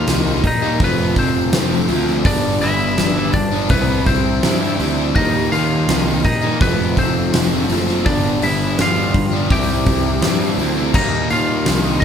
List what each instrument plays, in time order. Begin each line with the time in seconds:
Already playing: lead electric guitar F4 F5, string machine G4 A#4 D#5 A#5
0.07 picked electric bass C2, overdriven electric guitar D#3 G3 A#3 D#4 G4, snare, open hi-hat
0.25 overdriven electric guitar G3 A#3 D#4 G4
0.44 picked electric bass A#2, lead electric guitar D#4 D#5, muted overdriven electric guitar stroke, kick, open hi-hat
0.62 overdriven electric guitar G3 A#3 D#4 G4
0.79 picked electric bass F1, overdriven electric guitar F2 C3 F3 A3 C4 F4, string machine F4 A4 A5, kick, open hi-hat
0.84 lead electric guitar B3 B4
0.98 overdriven electric guitar A3 C4 F4
1.16 picked electric bass F1, overdriven electric guitar C3 F3 A3 C4, lead electric guitar C4 C5, kick, open hi-hat
1.52 picked electric bass F1, overdriven electric guitar F2 C3 F3 A3 C4 F4, snare, open hi-hat
1.70 overdriven electric guitar F3 A3 C4 F4
1.88 picked electric bass D2, overdriven electric guitar C3 F3 A3 C4 F4, open hi-hat
2.06 overdriven electric guitar F3 A3 C4 F4, snare
2.24 picked electric bass G1, overdriven electric guitar G2 D3 G3 B3 D4, lead electric guitar D4 D5, string machine G4 B4 D5, kick, open hi-hat
2.61 picked electric bass G1, overdriven electric guitar D3 G3 B3 D4, lead electric guitar E4 E5, open hi-hat
2.97 picked electric bass G1, overdriven electric guitar G2 D3 G3 B3 D4, snare, open hi-hat
3.15 overdriven electric guitar G3 B3 D4
3.33 lead electric guitar D4 D5, muted overdriven electric guitar stroke, kick, open hi-hat
3.51 overdriven electric guitar G3 B3 D4
3.69 picked electric bass C2, overdriven electric guitar C3 G3 C4 E4, lead electric guitar B3 B4, string machine G4 E5 G5, kick, open hi-hat
3.89 overdriven electric guitar G3 C4 E4
4.06 picked electric bass C2, overdriven electric guitar C3 G3 C4 E4, lead electric guitar C4 C5, kick, open hi-hat
4.43 picked electric bass G2, overdriven electric guitar C3 G3 C4 E4, snare, open hi-hat
4.60 overdriven electric guitar G3 C4 E4
4.79 picked electric bass D2, overdriven electric guitar C3 G3 C4 E4, open hi-hat
4.96 overdriven electric guitar G3 C4 E4
5.15 picked electric bass D#2, overdriven electric guitar D#3 G3 A#3 D#4, lead electric guitar D#4 D#5, string machine A#4 D#5 A#5, kick, open hi-hat
5.52 picked electric bass D#2, overdriven electric guitar D#3 G3 A#3 D#4, lead electric guitar F4 F5, open hi-hat
5.88 picked electric bass C2, overdriven electric guitar D#3 G3 A#3 D#4, snare, open hi-hat
6.05 overdriven electric guitar G3 A#3 D#4
6.24 picked electric bass A#2, lead electric guitar D#4 D#5, muted overdriven electric guitar stroke, kick, open hi-hat
6.41 overdriven electric guitar G3 A#3 D#4
6.60 picked electric bass F1, overdriven electric guitar F2 C3 F3 A3 C4, lead electric guitar B3 B4, string machine F4 A4 A5, kick, open hi-hat
6.79 overdriven electric guitar F3 A3 C4
6.96 picked electric bass F1, overdriven electric guitar C3 F3 A3 C4, lead electric guitar C4 C5, kick, open hi-hat
7.32 picked electric bass F1, overdriven electric guitar F2 C3 F3 A3 C4, snare, open hi-hat
7.51 overdriven electric guitar F3 A3 C4
7.69 picked electric bass F#1, overdriven electric guitar C3 F3 A3 C4, open hi-hat
7.87 overdriven electric guitar F3 A3 C4, snare
8.05 picked electric bass G1, overdriven electric guitar G2 D3 G3 B3 D4, lead electric guitar D4 D5, string machine G4 B4 D5, kick, open hi-hat
8.41 picked electric bass G1, overdriven electric guitar D3 G3 B3 D4, lead electric guitar E4 E5, open hi-hat
8.78 picked electric bass G1, overdriven electric guitar G2 D3 G3 B3 D4, lead electric guitar F4 F5, snare, open hi-hat
8.95 overdriven electric guitar G3 B3 D4
9.14 muted overdriven electric guitar stroke, kick, open hi-hat
9.31 overdriven electric guitar G3 B3 D4
9.49 picked electric bass C2, overdriven electric guitar C3 G3 C4 E4, lead electric guitar G4 G5, string machine E5 C6, kick, open hi-hat
9.70 overdriven electric guitar G3 C4 E4
9.86 picked electric bass C2, overdriven electric guitar C3 G3 C4 E4, kick, open hi-hat
10.22 picked electric bass G2, overdriven electric guitar C3 G3 C4 E4, snare, open hi-hat
10.40 overdriven electric guitar G3 C4 E4
10.58 picked electric bass D2, overdriven electric guitar C3 G3 C4 E4, open hi-hat
10.75 overdriven electric guitar G3 C4 E4
10.93 picked electric bass D#2, overdriven electric guitar D#3 G3 A#3 D#4, lead electric guitar D#4 D#5, string machine G4 A#4 D#5 A#5, kick, crash
11.30 picked electric bass D#2, overdriven electric guitar D#3 G3 A#3 D#4, lead electric guitar F4 F5, open hi-hat
11.66 picked electric bass C2, overdriven electric guitar D#3 G3 A#3 D#4, snare, open hi-hat
11.84 overdriven electric guitar G3 A#3 D#4
12.00 lead electric guitar D#5